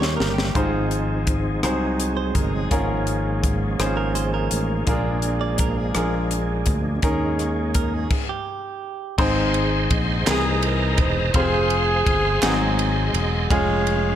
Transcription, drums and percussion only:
0.02 snare
0.20 snare
0.38 snare
0.55 kick, closed hi-hat
0.91 closed hi-hat
1.27 kick, closed hi-hat
1.63 cross-stick, closed hi-hat
2.00 closed hi-hat
2.35 kick, closed hi-hat
2.71 kick, closed hi-hat
3.07 closed hi-hat
3.44 kick, closed hi-hat
3.80 cross-stick, closed hi-hat
4.15 closed hi-hat
4.51 closed hi-hat
4.87 kick, closed hi-hat
5.22 closed hi-hat
5.58 kick, closed hi-hat
5.95 cross-stick, closed hi-hat
6.31 closed hi-hat
6.66 kick, closed hi-hat
7.02 kick, closed hi-hat
7.39 cross-stick, closed hi-hat
7.75 kick, closed hi-hat
8.10 kick, crash
9.18 kick, crash
9.54 ride bell
9.91 kick, ride bell
10.27 snare, clap, ride bell
10.62 ride bell
10.98 kick, ride bell
11.34 kick, ride bell
11.70 ride bell
12.07 kick, ride bell
12.42 snare, clap, ride bell
12.79 ride bell
13.14 ride bell
13.51 kick, ride bell
13.87 ride bell

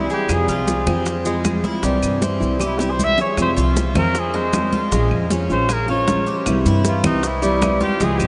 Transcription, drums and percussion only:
0.10 high bongo, high conga, maracas
0.29 high bongo, high conga, claves, maracas
0.49 high conga, maracas
0.68 high bongo, high conga, maracas
0.87 high conga, low conga, claves, maracas
1.06 high bongo, high conga, maracas
1.25 high conga, maracas
1.45 high bongo, low bongo, high conga, claves, maracas
1.64 high conga, maracas
1.83 high bongo, high conga, maracas
2.03 high conga, claves, maracas
2.22 high bongo, high conga, maracas
2.41 high bongo, high conga, maracas
2.60 high bongo, high conga, claves, maracas
2.79 high bongo, high conga, maracas
2.99 high conga, maracas
3.18 low bongo, high conga, maracas
3.37 high bongo, high conga, claves, maracas
3.57 high conga, maracas
3.76 high bongo, high conga, maracas
3.95 high conga, low conga, claves, maracas
4.15 high bongo, high conga, maracas
4.34 high conga
4.53 high bongo, low bongo, high conga, claves, maracas
4.73 high conga, maracas
4.92 high bongo, maracas
5.11 high conga, claves
5.30 high bongo, high conga, maracas
5.50 high bongo, high conga, maracas
5.69 high bongo, high conga, claves, maracas
5.88 high bongo, high conga
6.08 high bongo, low bongo, high conga, maracas
6.27 high bongo, high conga, maracas
6.46 high bongo, high conga, claves, maracas
6.66 high conga, maracas
6.85 high bongo, high conga, maracas
7.04 high conga, low conga, claves, maracas
7.23 high bongo, high conga, maracas
7.42 high conga, maracas
7.62 high bongo, low bongo, high conga, claves, maracas
7.81 high conga, maracas
8.00 high bongo, high conga, maracas
8.20 high conga, claves, maracas

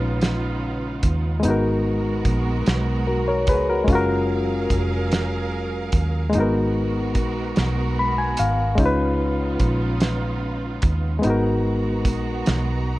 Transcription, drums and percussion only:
0.21 snare, closed hi-hat
1.03 kick, closed hi-hat
1.43 closed hi-hat
2.25 kick, closed hi-hat
2.66 snare, closed hi-hat
3.47 kick, closed hi-hat
3.88 kick, closed hi-hat
4.70 kick, closed hi-hat
5.11 snare, closed hi-hat
5.92 kick, closed hi-hat
6.33 closed hi-hat
7.15 kick, closed hi-hat
7.56 snare, closed hi-hat
8.37 closed hi-hat
8.78 kick, closed hi-hat
9.60 kick, closed hi-hat
10.00 snare, closed hi-hat
10.82 kick, closed hi-hat
11.23 closed hi-hat
12.05 kick, closed hi-hat
12.46 snare, closed hi-hat

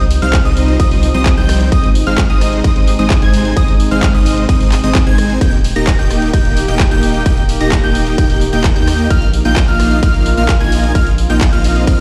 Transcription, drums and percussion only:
0.11 open hi-hat
0.22 closed hi-hat
0.33 kick, clap, closed hi-hat, ride
0.45 closed hi-hat
0.57 open hi-hat
0.68 closed hi-hat
0.80 kick, closed hi-hat, ride
0.91 open hi-hat
1.03 open hi-hat
1.14 closed hi-hat
1.26 kick, clap, closed hi-hat, ride
1.37 closed hi-hat
1.49 cross-stick, open hi-hat
1.61 closed hi-hat
1.72 kick, closed hi-hat, ride
1.84 closed hi-hat
1.95 open hi-hat
2.07 closed hi-hat
2.18 kick, clap, closed hi-hat, ride
2.30 closed hi-hat
2.41 cross-stick, open hi-hat
2.53 closed hi-hat
2.64 kick, closed hi-hat, ride
2.76 closed hi-hat
2.87 open hi-hat
2.99 closed hi-hat
3.10 kick, clap, closed hi-hat, ride
3.22 closed hi-hat
3.34 open hi-hat
3.45 closed hi-hat
3.57 kick, closed hi-hat, ride
3.68 closed hi-hat
3.80 open hi-hat
3.91 closed hi-hat
4.03 kick, clap, closed hi-hat, ride
4.14 closed hi-hat
4.26 open hi-hat
4.38 closed hi-hat
4.49 kick, closed hi-hat, ride
4.61 open hi-hat
4.72 clap, open hi-hat
4.84 closed hi-hat
4.95 kick, clap, closed hi-hat, ride
5.07 closed hi-hat
5.18 cross-stick, open hi-hat
5.30 closed hi-hat
5.41 kick, closed hi-hat, ride
5.53 closed hi-hat
5.64 open hi-hat
5.76 closed hi-hat
5.87 kick, clap, closed hi-hat, ride
5.99 closed hi-hat
6.11 cross-stick, open hi-hat
6.22 closed hi-hat
6.34 kick, closed hi-hat, ride
6.45 closed hi-hat
6.57 open hi-hat
6.68 closed hi-hat
6.79 kick, clap, closed hi-hat, ride
6.91 closed hi-hat
7.03 open hi-hat
7.14 closed hi-hat
7.26 kick, closed hi-hat, ride
7.37 closed hi-hat
7.49 open hi-hat
7.61 closed hi-hat
7.72 kick, clap, closed hi-hat, ride
7.84 closed hi-hat
7.95 open hi-hat
8.07 closed hi-hat
8.18 kick, closed hi-hat, ride
8.30 open hi-hat
8.41 open hi-hat
8.53 closed hi-hat
8.64 kick, clap, closed hi-hat, ride
8.76 closed hi-hat
8.87 cross-stick, open hi-hat
8.99 closed hi-hat
9.10 kick, closed hi-hat, ride
9.22 closed hi-hat
9.33 open hi-hat
9.45 closed hi-hat
9.56 kick, clap, closed hi-hat, ride
9.68 closed hi-hat
9.80 cross-stick, open hi-hat
9.91 closed hi-hat
10.03 kick, closed hi-hat, ride
10.14 closed hi-hat
10.26 open hi-hat
10.37 closed hi-hat
10.49 kick, clap, closed hi-hat, ride
10.61 closed hi-hat
10.72 open hi-hat
10.84 closed hi-hat
10.95 kick, closed hi-hat, ride
11.07 closed hi-hat
11.18 open hi-hat
11.30 closed hi-hat
11.41 kick, clap, closed hi-hat, ride
11.53 closed hi-hat
11.64 open hi-hat
11.76 closed hi-hat
11.87 kick, closed hi-hat, ride

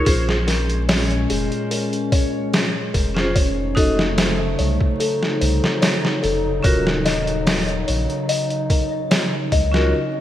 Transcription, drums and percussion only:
0.06 kick, open hi-hat
0.29 snare
0.48 snare, open hi-hat
0.70 closed hi-hat
0.89 snare, open hi-hat
1.11 closed hi-hat
1.30 open hi-hat
1.52 closed hi-hat
1.71 open hi-hat
1.93 closed hi-hat
2.12 kick, open hi-hat
2.54 snare, open hi-hat
2.94 kick, open hi-hat
3.17 snare
3.36 kick, open hi-hat
3.77 kick, open hi-hat
3.99 snare
4.18 snare, open hi-hat
4.59 open hi-hat
4.81 kick
5.00 open hi-hat
5.23 snare
5.41 open hi-hat
5.64 snare
5.82 snare, open hi-hat
6.05 snare
6.24 open hi-hat
6.64 kick, open hi-hat
6.87 snare
7.06 snare, open hi-hat
7.27 closed hi-hat
7.47 snare, open hi-hat
7.69 closed hi-hat
7.88 open hi-hat
8.10 closed hi-hat
8.29 open hi-hat
8.50 closed hi-hat
8.70 kick, open hi-hat
9.11 snare, open hi-hat
9.52 kick, open hi-hat
9.74 snare

